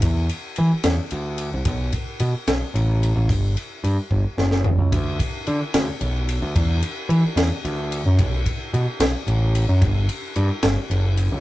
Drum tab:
RD |x-x-x-x-x-x-|x-x-x-x-x-x-|x-x-x-------|x-x-x-x-x-x-|
SD |------o-----|------o-----|--------oo--|------o-----|
FT |------------|------------|----------o-|------------|
BD |o-----------|o-o---------|o-----o-----|o-o---------|

RD |x-x-x-x-x-x-|x-x-x-x-x-x-|x-x-x-x-x-x-|
SD |------o-----|------o-----|------o-----|
FT |------------|------------|------------|
BD |o-----------|o-o---------|o-----------|